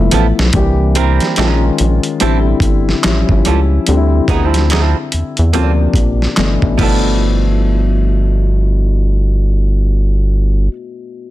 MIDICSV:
0, 0, Header, 1, 5, 480
1, 0, Start_track
1, 0, Tempo, 833333
1, 309, Time_signature, 4, 2, 24, 8
1, 6512, End_track
2, 0, Start_track
2, 0, Title_t, "Hollow-body jazz guitar"
2, 0, Program_c, 0, 26
2, 69, Note_on_c, 0, 53, 58
2, 74, Note_on_c, 0, 59, 59
2, 77, Note_on_c, 0, 64, 59
2, 80, Note_on_c, 0, 69, 69
2, 144, Note_off_c, 0, 53, 0
2, 147, Note_off_c, 0, 59, 0
2, 149, Note_off_c, 0, 64, 0
2, 150, Note_off_c, 0, 69, 0
2, 551, Note_on_c, 0, 55, 75
2, 554, Note_on_c, 0, 60, 78
2, 558, Note_on_c, 0, 64, 69
2, 561, Note_on_c, 0, 70, 77
2, 775, Note_off_c, 0, 55, 0
2, 776, Note_off_c, 0, 60, 0
2, 778, Note_off_c, 0, 64, 0
2, 780, Note_off_c, 0, 70, 0
2, 789, Note_on_c, 0, 56, 75
2, 792, Note_on_c, 0, 61, 79
2, 796, Note_on_c, 0, 65, 74
2, 801, Note_on_c, 0, 70, 77
2, 930, Note_off_c, 0, 56, 0
2, 932, Note_off_c, 0, 61, 0
2, 934, Note_off_c, 0, 65, 0
2, 936, Note_off_c, 0, 70, 0
2, 1269, Note_on_c, 0, 55, 67
2, 1272, Note_on_c, 0, 60, 82
2, 1276, Note_on_c, 0, 64, 80
2, 1278, Note_on_c, 0, 69, 79
2, 1365, Note_off_c, 0, 55, 0
2, 1367, Note_off_c, 0, 60, 0
2, 1369, Note_off_c, 0, 64, 0
2, 1370, Note_off_c, 0, 69, 0
2, 1991, Note_on_c, 0, 55, 55
2, 1995, Note_on_c, 0, 61, 52
2, 1999, Note_on_c, 0, 65, 56
2, 2001, Note_on_c, 0, 69, 53
2, 2065, Note_off_c, 0, 55, 0
2, 2068, Note_off_c, 0, 61, 0
2, 2069, Note_off_c, 0, 65, 0
2, 2071, Note_off_c, 0, 69, 0
2, 2468, Note_on_c, 0, 52, 75
2, 2474, Note_on_c, 0, 59, 75
2, 2476, Note_on_c, 0, 63, 78
2, 2481, Note_on_c, 0, 68, 79
2, 2560, Note_off_c, 0, 52, 0
2, 2560, Note_on_c, 0, 53, 75
2, 2566, Note_off_c, 0, 59, 0
2, 2566, Note_on_c, 0, 60, 75
2, 2568, Note_off_c, 0, 63, 0
2, 2568, Note_on_c, 0, 64, 78
2, 2573, Note_off_c, 0, 68, 0
2, 2573, Note_on_c, 0, 69, 79
2, 2694, Note_off_c, 0, 53, 0
2, 2696, Note_off_c, 0, 60, 0
2, 2698, Note_off_c, 0, 64, 0
2, 2700, Note_off_c, 0, 69, 0
2, 2710, Note_on_c, 0, 53, 70
2, 2714, Note_on_c, 0, 60, 70
2, 2717, Note_on_c, 0, 64, 70
2, 2720, Note_on_c, 0, 69, 76
2, 2850, Note_off_c, 0, 53, 0
2, 2852, Note_off_c, 0, 60, 0
2, 2854, Note_off_c, 0, 64, 0
2, 2856, Note_off_c, 0, 69, 0
2, 3187, Note_on_c, 0, 58, 73
2, 3190, Note_on_c, 0, 60, 78
2, 3194, Note_on_c, 0, 65, 83
2, 3196, Note_on_c, 0, 69, 83
2, 3284, Note_off_c, 0, 58, 0
2, 3286, Note_off_c, 0, 60, 0
2, 3288, Note_off_c, 0, 65, 0
2, 3289, Note_off_c, 0, 69, 0
2, 3903, Note_on_c, 0, 53, 59
2, 3914, Note_on_c, 0, 59, 68
2, 3924, Note_on_c, 0, 64, 69
2, 3931, Note_on_c, 0, 69, 71
2, 6169, Note_off_c, 0, 53, 0
2, 6180, Note_off_c, 0, 59, 0
2, 6190, Note_off_c, 0, 64, 0
2, 6197, Note_off_c, 0, 69, 0
2, 6512, End_track
3, 0, Start_track
3, 0, Title_t, "Upright piano"
3, 0, Program_c, 1, 0
3, 0, Control_c, 1, 64, 127
3, 0, Note_on_c, 1, 53, 56
3, 0, Note_on_c, 1, 57, 54
3, 0, Note_on_c, 1, 59, 50
3, 0, Note_on_c, 1, 64, 60
3, 288, Note_off_c, 1, 53, 0
3, 290, Note_off_c, 1, 57, 0
3, 291, Note_off_c, 1, 59, 0
3, 292, Note_off_c, 1, 64, 0
3, 314, Note_on_c, 1, 52, 68
3, 316, Control_c, 1, 64, 0
3, 317, Note_on_c, 1, 58, 62
3, 318, Note_on_c, 1, 62, 59
3, 323, Note_on_c, 1, 67, 81
3, 401, Control_c, 1, 64, 127
3, 791, Note_off_c, 1, 52, 0
3, 793, Note_off_c, 1, 58, 0
3, 793, Note_on_c, 1, 51, 72
3, 794, Note_off_c, 1, 62, 0
3, 796, Note_off_c, 1, 67, 0
3, 796, Control_c, 1, 64, 0
3, 796, Note_on_c, 1, 56, 67
3, 799, Note_on_c, 1, 61, 63
3, 802, Note_on_c, 1, 65, 77
3, 882, Control_c, 1, 64, 127
3, 1271, Note_off_c, 1, 51, 0
3, 1272, Note_off_c, 1, 56, 0
3, 1273, Note_on_c, 1, 50, 67
3, 1274, Note_off_c, 1, 61, 0
3, 1275, Note_off_c, 1, 65, 0
3, 1275, Note_on_c, 1, 55, 64
3, 1277, Control_c, 1, 64, 0
3, 1279, Note_on_c, 1, 60, 60
3, 1281, Note_on_c, 1, 64, 80
3, 1364, Control_c, 1, 64, 127
3, 1748, Note_off_c, 1, 55, 0
3, 1751, Note_off_c, 1, 50, 0
3, 1754, Note_off_c, 1, 60, 0
3, 1754, Note_off_c, 1, 64, 0
3, 1754, Note_on_c, 1, 53, 67
3, 1757, Control_c, 1, 64, 0
3, 1757, Note_on_c, 1, 55, 61
3, 1760, Note_on_c, 1, 61, 61
3, 1763, Note_on_c, 1, 64, 73
3, 1859, Control_c, 1, 64, 127
3, 2228, Note_off_c, 1, 55, 0
3, 2230, Note_on_c, 1, 50, 62
3, 2232, Note_off_c, 1, 53, 0
3, 2235, Note_off_c, 1, 61, 0
3, 2236, Note_off_c, 1, 64, 0
3, 2237, Control_c, 1, 64, 0
3, 2237, Note_on_c, 1, 55, 62
3, 2242, Note_on_c, 1, 60, 65
3, 2247, Note_on_c, 1, 62, 58
3, 2284, Note_off_c, 1, 62, 0
3, 2286, Note_on_c, 1, 64, 73
3, 2332, Control_c, 1, 64, 127
3, 3170, Note_off_c, 1, 50, 0
3, 3174, Note_off_c, 1, 55, 0
3, 3177, Note_off_c, 1, 60, 0
3, 3194, Note_on_c, 1, 48, 69
3, 3195, Control_c, 1, 64, 0
3, 3197, Note_on_c, 1, 53, 64
3, 3199, Note_off_c, 1, 64, 0
3, 3200, Note_on_c, 1, 58, 60
3, 3202, Note_on_c, 1, 61, 59
3, 3240, Note_on_c, 1, 62, 71
3, 3241, Note_off_c, 1, 61, 0
3, 3313, Control_c, 1, 64, 127
3, 3672, Note_off_c, 1, 48, 0
3, 3673, Note_off_c, 1, 53, 0
3, 3674, Note_off_c, 1, 58, 0
3, 3674, Note_off_c, 1, 62, 0
3, 3674, Note_on_c, 1, 47, 63
3, 3676, Control_c, 1, 64, 0
3, 3678, Note_on_c, 1, 52, 57
3, 3679, Note_on_c, 1, 57, 57
3, 3683, Note_on_c, 1, 62, 67
3, 3764, Control_c, 1, 64, 127
3, 3890, Note_off_c, 1, 47, 0
3, 3899, Note_on_c, 1, 47, 63
3, 3911, Note_on_c, 1, 64, 56
3, 3913, Note_off_c, 1, 52, 0
3, 3914, Note_off_c, 1, 57, 0
3, 3915, Control_c, 1, 64, 0
3, 3916, Note_off_c, 1, 62, 0
3, 3923, Note_on_c, 1, 57, 57
3, 3935, Note_on_c, 1, 62, 62
3, 4002, Control_c, 1, 64, 127
3, 4157, Control_c, 1, 64, 0
3, 4247, Control_c, 1, 64, 127
3, 6142, Note_off_c, 1, 47, 0
3, 6154, Note_off_c, 1, 64, 0
3, 6166, Note_off_c, 1, 57, 0
3, 6178, Note_off_c, 1, 62, 0
3, 6512, End_track
4, 0, Start_track
4, 0, Title_t, "Analog synth bass"
4, 0, Program_c, 2, 38
4, 78, Note_on_c, 2, 33, 97
4, 191, Note_off_c, 2, 33, 0
4, 226, Note_on_c, 2, 35, 88
4, 295, Note_off_c, 2, 35, 0
4, 313, Note_on_c, 2, 36, 102
4, 692, Note_off_c, 2, 36, 0
4, 797, Note_on_c, 2, 34, 101
4, 984, Note_off_c, 2, 34, 0
4, 1038, Note_on_c, 2, 34, 86
4, 1151, Note_off_c, 2, 34, 0
4, 1280, Note_on_c, 2, 33, 98
4, 1466, Note_off_c, 2, 33, 0
4, 1502, Note_on_c, 2, 31, 86
4, 1695, Note_off_c, 2, 31, 0
4, 1757, Note_on_c, 2, 33, 100
4, 1871, Note_off_c, 2, 33, 0
4, 1899, Note_on_c, 2, 31, 93
4, 1971, Note_off_c, 2, 31, 0
4, 1998, Note_on_c, 2, 37, 87
4, 2184, Note_off_c, 2, 37, 0
4, 2237, Note_on_c, 2, 38, 97
4, 2424, Note_off_c, 2, 38, 0
4, 2469, Note_on_c, 2, 38, 98
4, 2850, Note_off_c, 2, 38, 0
4, 2959, Note_on_c, 2, 40, 42
4, 3016, Note_off_c, 2, 40, 0
4, 3104, Note_on_c, 2, 40, 75
4, 3200, Note_on_c, 2, 38, 89
4, 3208, Note_off_c, 2, 40, 0
4, 3386, Note_off_c, 2, 38, 0
4, 3422, Note_on_c, 2, 34, 82
4, 3615, Note_off_c, 2, 34, 0
4, 3678, Note_on_c, 2, 31, 90
4, 3791, Note_off_c, 2, 31, 0
4, 3819, Note_on_c, 2, 33, 89
4, 3891, Note_off_c, 2, 33, 0
4, 3913, Note_on_c, 2, 31, 90
4, 6156, Note_off_c, 2, 31, 0
4, 6512, End_track
5, 0, Start_track
5, 0, Title_t, "Drums"
5, 66, Note_on_c, 9, 42, 61
5, 69, Note_on_c, 9, 62, 31
5, 69, Note_on_c, 9, 64, 72
5, 123, Note_off_c, 9, 42, 0
5, 127, Note_off_c, 9, 62, 0
5, 127, Note_off_c, 9, 64, 0
5, 225, Note_on_c, 9, 38, 99
5, 283, Note_off_c, 9, 38, 0
5, 304, Note_on_c, 9, 42, 76
5, 308, Note_on_c, 9, 36, 100
5, 361, Note_off_c, 9, 42, 0
5, 366, Note_off_c, 9, 36, 0
5, 548, Note_on_c, 9, 42, 50
5, 606, Note_off_c, 9, 42, 0
5, 694, Note_on_c, 9, 42, 38
5, 706, Note_on_c, 9, 38, 33
5, 751, Note_off_c, 9, 42, 0
5, 764, Note_off_c, 9, 38, 0
5, 784, Note_on_c, 9, 42, 56
5, 801, Note_on_c, 9, 39, 77
5, 802, Note_on_c, 9, 38, 96
5, 842, Note_off_c, 9, 42, 0
5, 859, Note_off_c, 9, 39, 0
5, 860, Note_off_c, 9, 38, 0
5, 1028, Note_on_c, 9, 42, 64
5, 1086, Note_off_c, 9, 42, 0
5, 1172, Note_on_c, 9, 42, 41
5, 1230, Note_off_c, 9, 42, 0
5, 1268, Note_on_c, 9, 42, 69
5, 1325, Note_off_c, 9, 42, 0
5, 1498, Note_on_c, 9, 36, 82
5, 1509, Note_on_c, 9, 42, 66
5, 1556, Note_off_c, 9, 36, 0
5, 1566, Note_off_c, 9, 42, 0
5, 1663, Note_on_c, 9, 38, 31
5, 1721, Note_off_c, 9, 38, 0
5, 1748, Note_on_c, 9, 42, 70
5, 1750, Note_on_c, 9, 39, 78
5, 1751, Note_on_c, 9, 38, 92
5, 1806, Note_off_c, 9, 42, 0
5, 1808, Note_off_c, 9, 39, 0
5, 1809, Note_off_c, 9, 38, 0
5, 1894, Note_on_c, 9, 36, 79
5, 1952, Note_off_c, 9, 36, 0
5, 1987, Note_on_c, 9, 42, 57
5, 2045, Note_off_c, 9, 42, 0
5, 2226, Note_on_c, 9, 42, 70
5, 2284, Note_off_c, 9, 42, 0
5, 2465, Note_on_c, 9, 36, 69
5, 2469, Note_on_c, 9, 42, 47
5, 2522, Note_off_c, 9, 36, 0
5, 2527, Note_off_c, 9, 42, 0
5, 2615, Note_on_c, 9, 42, 37
5, 2628, Note_on_c, 9, 38, 29
5, 2673, Note_off_c, 9, 42, 0
5, 2686, Note_off_c, 9, 38, 0
5, 2707, Note_on_c, 9, 42, 53
5, 2724, Note_on_c, 9, 39, 73
5, 2725, Note_on_c, 9, 38, 94
5, 2764, Note_off_c, 9, 42, 0
5, 2781, Note_off_c, 9, 39, 0
5, 2782, Note_off_c, 9, 38, 0
5, 2949, Note_on_c, 9, 42, 60
5, 3007, Note_off_c, 9, 42, 0
5, 3093, Note_on_c, 9, 42, 37
5, 3150, Note_off_c, 9, 42, 0
5, 3188, Note_on_c, 9, 42, 68
5, 3246, Note_off_c, 9, 42, 0
5, 3419, Note_on_c, 9, 36, 74
5, 3430, Note_on_c, 9, 42, 61
5, 3476, Note_off_c, 9, 36, 0
5, 3487, Note_off_c, 9, 42, 0
5, 3584, Note_on_c, 9, 38, 30
5, 3641, Note_off_c, 9, 38, 0
5, 3667, Note_on_c, 9, 42, 61
5, 3669, Note_on_c, 9, 39, 74
5, 3670, Note_on_c, 9, 38, 91
5, 3724, Note_off_c, 9, 42, 0
5, 3727, Note_off_c, 9, 39, 0
5, 3728, Note_off_c, 9, 38, 0
5, 3814, Note_on_c, 9, 36, 75
5, 3872, Note_off_c, 9, 36, 0
5, 3909, Note_on_c, 9, 36, 77
5, 3910, Note_on_c, 9, 49, 68
5, 3967, Note_off_c, 9, 36, 0
5, 3968, Note_off_c, 9, 49, 0
5, 6512, End_track
0, 0, End_of_file